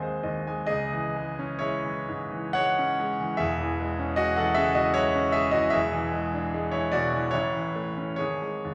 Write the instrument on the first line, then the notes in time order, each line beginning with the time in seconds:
grand piano
Already playing: G#1 D#2 G#3 C4 D#4 C5 D#5 G#5 C6
0.02 G#3 C5
0.23 D#2 D#5
0.47 G#3 G#5
0.67 C#2 G#4 D#5
0.93 E3
1.16 G#3
1.39 C#4
1.59 G#3 E4 C#5
1.85 E3
2.08 G#2
2.32 E3
2.53 G#3 C#5 F#5
2.79 C#4
3.00 G#3
3.20 E3
3.37 E1 E2 G#4 E5
3.60 E3
3.80 G#3
3.99 C#4
4.16 G#3 F#4 D#5
4.36 E3 A4 F#5
4.54 C#3 G#4 E5
4.75 E3 F#4 D#5
4.94 G#3 E4 C#5
5.16 C#4
5.32 G#3 G#4 E5
5.51 E3 F#4 D#5
5.70 E1 E2 G#4 E5
5.93 E3
6.13 G#3
6.34 D4
6.54 G#3
6.72 E3 E4 C#5
6.92 B2 F#4 D5
7.13 E3
7.31 A1 E4 C#5
7.56 E3
7.76 A3
7.98 C#4
8.16 G#1 G#4 C#5
8.42 G#3
8.65 D#2